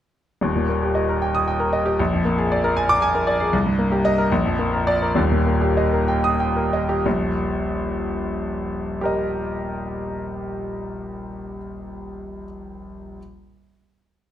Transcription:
grand piano
0.41 D#1 D#2
0.56 A#2
0.69 A#3
0.82 G4
0.95 D#5
1.09 A#4
1.22 G5
1.35 D#6
1.48 G5
1.60 A#4
1.73 D#5
1.86 G4
1.99 A#1
2.13 F2
2.25 A#3
2.38 G#4
2.52 D5
2.64 A#4
2.77 G#5
2.89 D6
3.02 G#5
3.15 A#4
3.27 D5
3.40 G#4
3.53 C2
3.66 G2
3.79 A#3
3.92 G4
4.05 D#5
4.18 A#4
4.32 A#1
4.45 F2
4.59 A#3
4.73 A#4
4.87 D5
5.02 A#4
5.15 D#1 D#2
5.32 A#2
5.47 A#3
5.61 G4
5.77 D#5
5.93 A#4
6.08 G5
6.24 D#6
6.40 G5
6.56 A#4
6.73 D#5
6.89 G4
7.06 D#1 A#1
9.01 G4 A#4
9.05 D#5

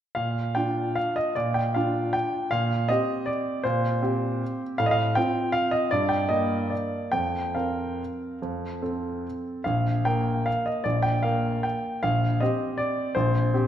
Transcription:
upright piano
0.15 A#2 F5
0.55 D4 F4 G5
0.95 F5
1.16 D#5
1.35 A#2 D5
1.54 G5
1.74 D4 F4 F5
2.13 G5
2.51 A#2 F5
2.88 C4 G4 D#5
3.26 D5
3.64 A#2 C5
4.02 C4 G4
4.78 A2 F5
4.86 D#5
4.91 F5
5.15 C4 F4 G5
5.52 F5
5.71 D#5
5.91 G2 D5
6.09 G5
6.29 A#3 A#4 D#5
6.70 D5
7.12 F2 G5
7.55 C4 A#4 F5
8.42 F2
8.82 C4 A4
9.64 A#1 F5
10.05 A#3 A#4 G5
10.46 F5
10.66 D#5
10.84 A#1 D5
11.03 G5
11.23 A#3 A#4 F5
11.63 G5
12.03 A#1 F5
12.40 C4 G4 D#5
12.78 D5
13.15 A#1 C5
13.54 C4 G4

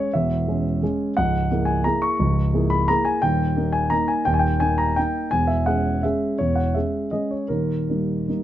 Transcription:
grand piano
Already playing: G#3 C#4 G#4 C#5
0.14 E1 E2 E5
0.48 G#3 C#4 G#4
0.83 G#3 C#4 G#4
1.17 C#1 C#2 F#5
1.51 A#3 E4 G#4
1.65 G#5
1.84 A#3 E4 G#4 A#5
2.02 C#6
2.19 C#1 C#2
2.54 A#3 E4 G#4
2.70 B5
2.88 A#3 E4 G#4 A#5
3.05 G#5
3.22 D#1 D#2 G5
3.56 A#3 D#4
3.73 G#5
3.90 A#3 D#4 A#5
4.08 G#5
4.25 D#1 D#2 G5
4.34 G#5
4.39 G5
4.60 A#3 D#4 G#5
4.78 A#5
4.96 A#3 D#4 G5
5.31 E1 E2 G#5
5.47 E5
5.66 G#3 C#4 G#4 F#5
6.03 G#3 C#4 G#4 E5
6.38 E1 E2 C#5
6.55 F#5
6.74 G#3 C#4 G#4 E5
7.11 G#3 C#4 G#4 D#5
7.31 C#5
7.48 D#1 D#2 A#4
7.89 G3 A#3 D#4
8.28 G3 A#3 D#4

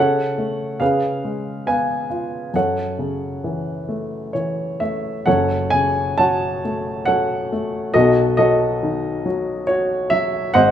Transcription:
grand piano
Already playing: C#3 F#5
0.00 A4 C#5
0.38 A3
0.80 C#3 G#4 B4 F5
1.25 G#3
1.67 B3 B4 F5 G#5
2.10 F4
2.54 F#2 A4 C#5 F#5
2.99 C#3
3.44 E3
3.89 A3
4.33 E3 C#5
4.80 A3 E5
5.26 F#1 F#2 A4 C#5 F#5
5.70 C#3 G#5
6.18 F#3 C#5 F#5 A5
6.65 A3
7.05 F#3 A4 C#5 F#5
7.52 A3
7.94 B1 B2 F#4 A4 D#5
8.37 F#3 F#4 A4 D#5
8.83 D#3
9.26 F#3
9.67 F#4 C#5
10.10 F#3 E5
10.54 G#1 G#2 C5 D#5 F#5

